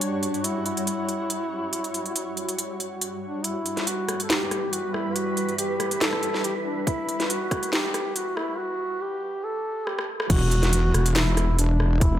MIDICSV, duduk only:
0, 0, Header, 1, 2, 480
1, 0, Start_track
1, 0, Tempo, 428571
1, 16, Time_signature, 4, 2, 24, 8
1, 13658, End_track
2, 0, Start_track
2, 0, Title_t, "Duduk"
2, 0, Program_c, 0, 69
2, 20, Note_on_c, 0, 62, 105
2, 498, Note_on_c, 0, 64, 102
2, 515, Note_off_c, 0, 62, 0
2, 730, Note_off_c, 0, 64, 0
2, 737, Note_on_c, 0, 64, 102
2, 3331, Note_off_c, 0, 64, 0
2, 3617, Note_on_c, 0, 62, 86
2, 3857, Note_on_c, 0, 64, 97
2, 3874, Note_off_c, 0, 62, 0
2, 4335, Note_on_c, 0, 66, 96
2, 4352, Note_off_c, 0, 64, 0
2, 4734, Note_off_c, 0, 66, 0
2, 4740, Note_on_c, 0, 69, 69
2, 4812, Note_on_c, 0, 67, 105
2, 4829, Note_off_c, 0, 69, 0
2, 5294, Note_on_c, 0, 66, 98
2, 5311, Note_off_c, 0, 67, 0
2, 5533, Note_on_c, 0, 64, 95
2, 5550, Note_off_c, 0, 66, 0
2, 5774, Note_on_c, 0, 66, 109
2, 5791, Note_off_c, 0, 64, 0
2, 6247, Note_off_c, 0, 66, 0
2, 6254, Note_on_c, 0, 67, 100
2, 6701, Note_off_c, 0, 67, 0
2, 6733, Note_on_c, 0, 69, 114
2, 7181, Note_off_c, 0, 69, 0
2, 7215, Note_on_c, 0, 67, 107
2, 7323, Note_off_c, 0, 67, 0
2, 7452, Note_on_c, 0, 62, 91
2, 7677, Note_off_c, 0, 62, 0
2, 7691, Note_on_c, 0, 64, 108
2, 8171, Note_on_c, 0, 66, 96
2, 8188, Note_off_c, 0, 64, 0
2, 8645, Note_off_c, 0, 66, 0
2, 8652, Note_on_c, 0, 67, 107
2, 9131, Note_on_c, 0, 66, 102
2, 9148, Note_off_c, 0, 67, 0
2, 9370, Note_on_c, 0, 64, 97
2, 9387, Note_off_c, 0, 66, 0
2, 9611, Note_on_c, 0, 66, 111
2, 9628, Note_off_c, 0, 64, 0
2, 10092, Note_on_c, 0, 67, 98
2, 10109, Note_off_c, 0, 66, 0
2, 10571, Note_on_c, 0, 69, 106
2, 10587, Note_off_c, 0, 67, 0
2, 11054, Note_on_c, 0, 67, 92
2, 11071, Note_off_c, 0, 69, 0
2, 11295, Note_off_c, 0, 67, 0
2, 11535, Note_on_c, 0, 66, 106
2, 12498, Note_on_c, 0, 64, 99
2, 12514, Note_off_c, 0, 66, 0
2, 12971, Note_off_c, 0, 64, 0
2, 12978, Note_on_c, 0, 62, 98
2, 13457, Note_on_c, 0, 64, 111
2, 13474, Note_off_c, 0, 62, 0
2, 13658, Note_off_c, 0, 64, 0
2, 13658, End_track
0, 0, End_of_file